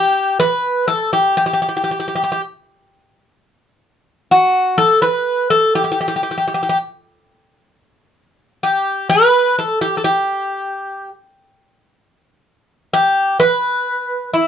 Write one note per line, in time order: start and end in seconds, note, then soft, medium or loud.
0.00 0.39 G4 medium
0.40 0.85 B4 loud
0.88 1.11 A4 medium
1.13 1.36 G4 medium
1.37 1.45 G4 medium
1.46 1.52 G4 soft
1.53 1.61 G4 medium
1.62 1.67 G4 soft
1.69 1.75 G4 soft
1.77 1.83 G4 soft
1.84 1.90 G4 soft
1.91 1.98 G4 soft
2.00 2.07 G4 soft
2.08 2.14 G4 soft
2.15 2.22 G4 medium
2.24 2.31 G4 medium
2.32 2.40 G4 medium
4.31 4.76 F#4 medium
4.78 5.01 A4 loud
5.02 5.47 B4 loud
5.50 5.73 A4 medium
5.75 5.82 G4 medium
5.84 5.90 G4 medium
5.92 5.98 G4 medium
6.01 6.07 G4 soft
6.08 6.14 G4 medium
6.16 6.22 G4 soft
6.23 6.30 G4 soft
6.31 6.36 G4 soft
6.38 6.45 G4 soft
6.48 6.53 G4 soft
6.54 6.61 G4 medium
6.63 6.68 G4 medium
6.69 6.76 G4 medium
8.63 9.08 G4 medium
9.10 9.55 B4 loud
9.59 9.81 A4 medium
9.81 9.97 G4 medium
9.97 10.04 A4 medium
10.04 11.08 G4 medium
12.93 13.36 G4 medium
13.40 14.29 B4 loud
14.33 14.48 E4 medium